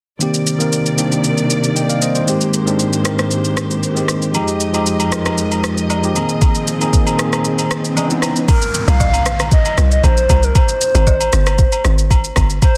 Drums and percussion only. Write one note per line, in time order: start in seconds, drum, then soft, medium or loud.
0.21 shaker medium
0.34 shaker soft
0.47 shaker medium
0.60 shaker medium
0.73 shaker medium
0.86 shaker medium
0.98 shaker loud
1.12 shaker medium
1.24 shaker medium
1.38 shaker soft
1.50 shaker medium
1.64 shaker soft
1.76 shaker medium
1.90 shaker medium
2.02 shaker medium
2.15 shaker medium
2.28 shaker medium
2.41 shaker soft
2.54 shaker medium
2.67 shaker medium
2.79 shaker medium
2.93 shaker medium
3.05 cross-stick loud
3.05 shaker loud
3.19 cross-stick medium
3.19 shaker medium
3.31 shaker medium
3.45 shaker soft
3.57 cross-stick loud
3.57 shaker medium
3.71 shaker soft
3.83 shaker medium
3.97 shaker medium
4.08 cross-stick medium
4.08 shaker medium
4.22 shaker soft
4.35 high agogo medium
4.35 shaker medium
4.48 shaker soft
4.60 shaker medium
4.74 high agogo medium
4.74 shaker medium
4.86 shaker medium
5.00 high agogo medium
5.00 shaker medium
5.12 cross-stick medium
5.12 shaker loud
5.26 cross-stick medium
5.26 high agogo medium
5.26 shaker medium
5.38 shaker medium
5.51 high agogo medium
5.51 shaker soft
5.64 cross-stick loud
5.64 shaker medium
5.78 shaker medium
5.90 high agogo medium
5.90 low woodblock medium
5.90 shaker medium
6.04 shaker soft
6.16 high agogo medium
6.16 shaker medium
6.29 shaker medium
6.42 kick loud
6.42 high agogo medium
6.42 shaker medium
6.55 shaker medium
6.67 shaker loud
6.81 high agogo medium
6.81 shaker medium
6.93 kick medium
6.93 shaker medium
7.07 high agogo medium
7.07 shaker medium
7.19 cross-stick loud
7.19 shaker loud
7.33 cross-stick medium
7.33 high agogo medium
7.33 shaker medium
7.45 shaker medium
7.59 high agogo medium
7.59 shaker medium
7.71 cross-stick loud
7.71 shaker medium
7.85 shaker soft
7.97 high agogo medium
7.97 low woodblock medium
7.97 shaker medium
8.10 shaker medium
8.22 cross-stick medium
8.22 high agogo medium
8.22 shaker medium
8.36 shaker soft
8.48 kick loud
8.48 high agogo medium
8.48 shaker medium
8.62 shaker medium
8.74 shaker loud
8.88 high agogo medium
8.88 shaker medium
9.00 kick medium
9.00 low woodblock medium
9.00 shaker medium
9.14 high agogo medium
9.14 shaker medium
9.26 cross-stick loud
9.26 shaker loud
9.40 cross-stick medium
9.40 high agogo medium
9.40 shaker medium
9.52 kick loud
9.52 shaker medium
9.65 high agogo medium
9.65 shaker medium
9.78 cross-stick loud
9.78 shaker medium
9.91 shaker medium
10.04 kick medium
10.04 high agogo medium
10.04 shaker medium
10.17 shaker medium
10.29 kick loud
10.29 high agogo medium
10.29 shaker medium
10.43 shaker medium
10.55 kick loud
10.55 high agogo medium
10.55 shaker medium
10.68 shaker medium
10.81 shaker loud
10.95 high agogo medium
10.95 shaker medium
11.07 kick medium
11.07 low woodblock medium
11.07 shaker medium
11.20 high agogo medium
11.20 shaker medium
11.33 cross-stick loud
11.33 shaker loud
11.46 cross-stick loud
11.46 high agogo medium
11.46 shaker medium
11.58 kick loud
11.58 shaker medium
11.72 high agogo medium
11.72 shaker medium
11.85 cross-stick loud
11.85 shaker medium
11.98 shaker medium
12.11 kick medium
12.11 high agogo medium
12.11 shaker medium
12.24 shaker medium
12.36 kick loud
12.36 cross-stick loud
12.36 high agogo medium
12.36 shaker medium
12.50 shaker medium
12.62 kick loud
12.62 high agogo medium
12.62 shaker medium